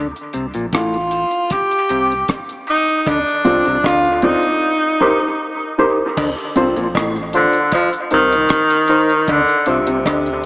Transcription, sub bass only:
Already playing: D2
0.35 C2
0.55 A#1
0.73 A1
1.90 C2
3.07 D2
3.46 C2
3.67 C2
3.85 D2
6.18 D2
6.57 C2
6.77 A#1
6.95 A1
8.13 C2
9.29 D2
9.68 C2
9.89 C2
10.06 D2

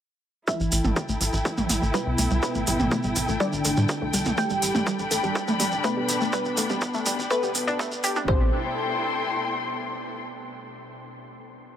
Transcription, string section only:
0.47 E4
0.68 A4
0.72 G5
4.38 D4
4.51 B5
8.28 E4
8.35 A4
8.43 G5
8.50 C6

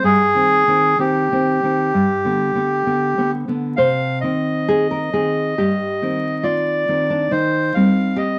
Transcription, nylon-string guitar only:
0.03 G2
0.35 D#3 C4
0.68 D#3 C4
0.99 D#3 C4
1.32 D#3 C4
1.63 D#3 C4
1.94 G2
2.25 D3 B3
2.55 D3 B3
2.86 D3 B3
3.17 D3 B3
3.48 D3 B3
3.78 C3 C5
4.23 D#3 C4
4.68 G#4
4.91 A#4
5.13 D#3 C4 G#4
5.58 G2 G4
6.02 D#3 C4
6.43 F4
6.88 D#3 C4
7.10 D4
7.31 D#3 D#4
7.76 G3 C4
8.16 G4

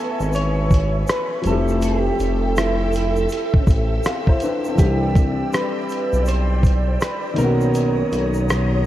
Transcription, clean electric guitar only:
Already playing: A4
0.35 C#5
1.10 B4
1.47 A4
1.85 G4
2.58 E4
4.79 G4
5.53 B4
6.28 C5
7.01 B4
7.38 A#4

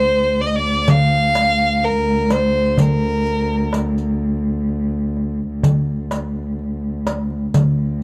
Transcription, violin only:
Already playing: C5
0.41 D5
0.46 D#5
0.56 D5
0.89 F5
1.84 A#4
2.32 C5
2.80 A#4

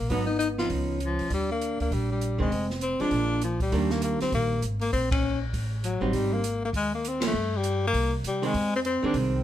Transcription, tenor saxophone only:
Already playing: A#3
0.09 B3
0.26 D#4
0.39 D#4
0.59 F4
1.04 F3
1.34 G3
1.51 A#3
1.81 A#3
1.93 G3
2.12 G3
2.40 G#3
2.82 C4
3.01 D4
3.44 F3
3.62 G3
3.91 A#3
4.04 A#3
4.22 C4
4.34 A#3
4.81 A#3
4.93 C4
5.11 C#4
5.84 F#3
6.14 G3
6.33 A#3
6.65 A#3
6.76 G#3
6.94 A#3
7.08 C4
7.27 A3
7.56 G3
7.87 A#3
8.27 G3
8.46 G#3
8.76 C4
8.86 C4
9.05 D4

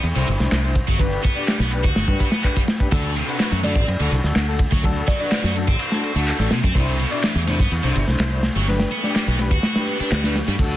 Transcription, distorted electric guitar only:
0.16 C3
0.88 F#3
1.24 B3
1.48 G3
1.60 B3
1.84 F#4
2.19 B3
2.32 B3
2.44 F#4
2.56 G3
2.92 D3
3.04 D3
3.16 C3
3.40 F#3
3.52 F#3
3.64 D3
3.76 C4
4.00 D3
4.72 F#3
5.08 F#3
5.31 D3
5.44 F#3
5.68 C4
6.16 A3
6.51 C3
6.64 C4
6.76 C3
6.88 C3
6.99 B2
7.24 E3
7.36 E3
7.48 C3
7.60 B3
7.84 C3
8.56 F#3
8.91 B3
9.16 G3
9.28 B3
9.52 F#4
9.88 B3
10.00 D4
10.12 F#4
10.24 G3
10.48 G3

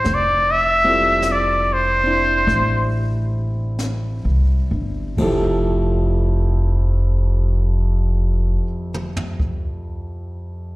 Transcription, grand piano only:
Already playing: C4 D4 E4
0.84 G3 C4 E4 F4
0.88 A4
2.04 C4 D4 E4
5.18 F2 F3 E4 G4 A4

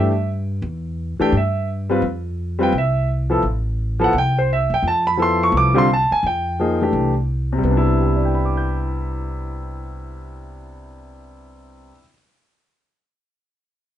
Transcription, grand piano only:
Already playing: E3 A3 D4 G4 E5
1.20 E3 A3 D4 G4 G5
1.37 E5
1.90 G3 C4 F4 B4
2.59 G3 C4 F4 B4
2.63 G5
2.78 E5
3.30 F3 B3 E4 A4
4.00 F3 B3 E4 A4
4.04 F#5
4.18 G5
4.38 C5
4.53 E5
4.74 G5
4.88 A5
5.07 B5
5.17 F3 B3 E4 A4
5.22 C6
5.43 C#6
5.57 D6
5.74 D3 G3 C4 F4
5.78 C6
5.93 A5
6.12 G#5
6.27 G5
6.60 F3 A#3 D#4 G#4
6.81 E3 A3 D4 G4
7.53 C3
7.58 G3
7.65 B3
7.71 D4
7.77 E4
8.01 G4
8.08 B4
8.16 D5
8.25 G5
8.35 B5
8.45 D6
8.57 G6

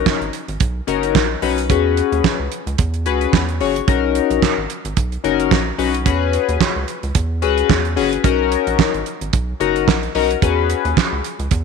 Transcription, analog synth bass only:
0.21 G#1
0.48 G#1
0.61 B1
0.88 F#1
1.15 A#1
1.42 B1
1.70 E2
2.12 D#2
2.39 C#2
2.67 C#2
2.79 E2
3.06 C#2
3.33 E2
3.60 F#1
3.88 B1
4.30 A#1
4.58 G#1
4.85 G#1
4.97 B1
5.24 F#1
5.51 A#1
5.79 B1
6.06 E2
6.49 D#2
6.76 C#2
7.03 C#2
7.15 E2
7.43 C#2
7.70 E2
7.97 F#1
8.24 B1
8.67 A#1
8.94 G#1
9.21 G#1
9.33 B1
9.60 F#1
9.88 A#1
10.15 B1
10.42 E2
10.85 D#2
11.12 C#2
11.39 C#2
11.51 E2

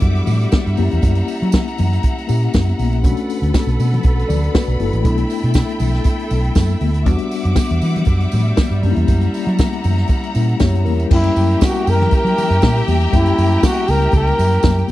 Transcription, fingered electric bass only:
0.02 F#2
0.27 A2
0.67 G2
0.79 F#2
0.93 E2
1.03 F#2
1.42 F#3
1.80 F#2
2.29 A#2
2.54 F#2
2.79 A#1
3.05 B1
3.42 D2
3.67 B1
3.80 B2
4.05 B1
4.29 D2
4.68 B1
4.80 G1
4.93 A1
5.05 B1
5.44 B2
5.80 B1
6.31 B1
6.56 F#2
6.81 D2
7.06 E2
7.45 F#2
7.71 E2
7.83 E3
8.07 F#2
8.33 A2
8.71 G2
8.84 F#2
8.97 E2
9.08 F#2
9.47 F#3
9.85 F#2
10.36 A#2
10.61 F#2
10.86 E2
11.11 F#2
11.37 F#2
11.87 F#2
12.12 muted fingered electric bass stroke
12.25 F#3
12.50 F#2
12.63 A#2
12.88 E2
13.13 F#2
13.38 F#2
13.89 C#2
14.13 C#2
14.39 F#2
14.64 F#2

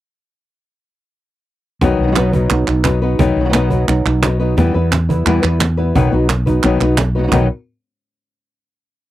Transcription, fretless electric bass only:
1.81 B1
1.99 B1
2.51 B1
2.68 B1
3.19 B1
3.36 B1
3.88 B1
4.05 B1
4.57 E2
4.75 E2
5.26 E2
5.44 E2
5.96 B1
6.13 B1
6.64 B1
6.81 B1
7.32 B1

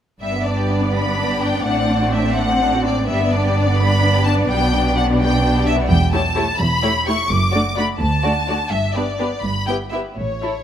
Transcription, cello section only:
0.22 G2
1.67 A2
3.08 G2
4.50 B2
5.90 E2
6.60 E2
7.30 F#2
8.00 D2
8.71 G2
9.44 G2
10.17 A2

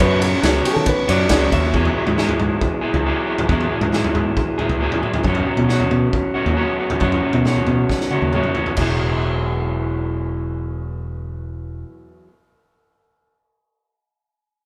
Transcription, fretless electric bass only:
0.00 F#2
0.43 C#2
0.76 D#3
1.09 F#2
1.30 C#2
1.52 D#2
1.74 E2
2.07 G#2
2.40 G#2
2.94 C#2
3.49 E2
3.81 G#2
4.14 G#2
4.69 C#2
5.25 F#2
5.58 B2
5.91 B2
6.46 D#2
7.01 F#2
7.33 B2
7.67 B2
8.22 D#2
8.78 E1

